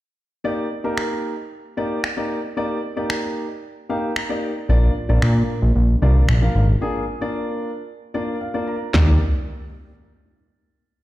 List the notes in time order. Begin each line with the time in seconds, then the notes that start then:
0.44 A#3 D#4 G4 D5
0.84 A#3 D#4 G4 A#4
0.98 finger snap
1.77 A#3 D#4 G4 D5
2.04 finger snap
2.17 A#3 D#4 G4 D5
2.57 A#3 D#4 G4 D5
2.96 A#3 D#4 G4 D5
3.10 finger snap
3.89 A#3 D#4 G4 F5 G5
4.16 A#5, finger snap
4.29 A#3 D#4 G4 D5
4.69 A#1 A#3 D4 F4 D5
5.09 A#1 A#3 D4 F4 D5
5.22 A#2, finger snap
5.62 A#1
5.75 A#1
6.02 C2 A#3 D4 F4 D5
6.29 A#1, finger snap
6.42 A#3 D4 F4 F5
6.55 G#1
6.81 A#3 D4 F4 G#4
7.21 A#3 D4 F4 D5
8.14 A#3 D4 F4 D5
8.41 F5
8.54 A#3 D4 F4 D5
8.68 A#5
8.94 D#2 A#3 D#4 G4 D5, snare, clap, floor tom